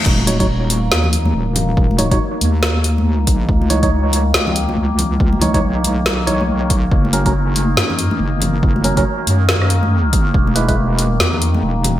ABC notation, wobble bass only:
X:1
M:4/4
L:1/8
Q:"Swing 16ths" 1/4=140
K:Ebphr
V:1 name="Wobble bass" clef=bass
E,,,4 E,,2 E,,,2- | E,,,2 z E,,4- E,, | D,,4 D,,2 D,,2- | D,,2 C,,6 |
G,,,4 G,,2 G,,,2- | G,,,2 z G,,4- G,, | =E,,,4 =E,,2 E,,,2 |]